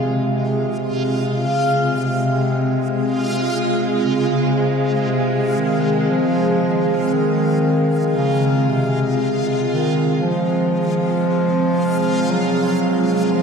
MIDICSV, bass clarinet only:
0, 0, Header, 1, 2, 480
1, 0, Start_track
1, 0, Key_signature, -4, "minor"
1, 0, Tempo, 1034483
1, 911, Time_signature, 4, 2, 24, 8
1, 6230, End_track
2, 0, Start_track
2, 0, Title_t, "Bass clarinet"
2, 0, Program_c, 0, 71
2, 0, Note_on_c, 0, 48, 78
2, 424, Note_off_c, 0, 48, 0
2, 427, Note_on_c, 0, 48, 74
2, 672, Note_on_c, 0, 49, 66
2, 679, Note_off_c, 0, 48, 0
2, 911, Note_on_c, 0, 48, 88
2, 917, Note_off_c, 0, 49, 0
2, 1746, Note_off_c, 0, 48, 0
2, 1869, Note_on_c, 0, 49, 84
2, 2350, Note_on_c, 0, 48, 71
2, 2357, Note_off_c, 0, 49, 0
2, 2590, Note_on_c, 0, 51, 74
2, 2597, Note_off_c, 0, 48, 0
2, 2831, Note_on_c, 0, 53, 91
2, 2838, Note_off_c, 0, 51, 0
2, 3311, Note_on_c, 0, 51, 88
2, 3318, Note_off_c, 0, 53, 0
2, 3789, Note_off_c, 0, 51, 0
2, 3791, Note_on_c, 0, 49, 85
2, 4031, Note_on_c, 0, 48, 82
2, 4038, Note_off_c, 0, 49, 0
2, 4386, Note_off_c, 0, 48, 0
2, 4507, Note_on_c, 0, 51, 84
2, 4743, Note_on_c, 0, 53, 106
2, 4750, Note_off_c, 0, 51, 0
2, 5710, Note_on_c, 0, 54, 94
2, 5717, Note_off_c, 0, 53, 0
2, 6187, Note_on_c, 0, 53, 92
2, 6194, Note_off_c, 0, 54, 0
2, 6230, Note_off_c, 0, 53, 0
2, 6230, End_track
0, 0, End_of_file